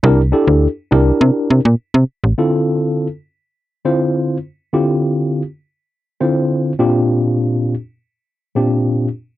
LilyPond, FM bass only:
\new Staff \with { instrumentName = "FM bass" } { \clef bass \time 4/4 \key d \minor \tempo 4 = 102 c,8. d,8 r16 c,8 c16 r16 c16 bes,16 r16 c16 r16 a,,16 | r1 | r1 | r1 | }